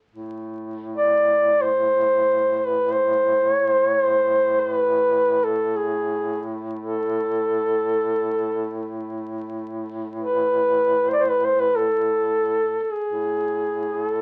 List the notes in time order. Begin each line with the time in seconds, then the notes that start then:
0.08 A2
0.96 D5
1.62 C5
2.58 C5
2.67 B4
2.93 C5
3.52 C#5
3.68 C5
3.85 C#5
4.01 C5
4.60 C5
4.72 B4
5.44 A4
5.76 G#4
6.78 A4
10.19 B4
11.10 C5 D5
11.20 C5
11.29 B4
11.45 C5
11.61 B4
11.76 A4
12.82 A4
12.92 G#4
13.05 A2
13.94 G#4
14.07 A4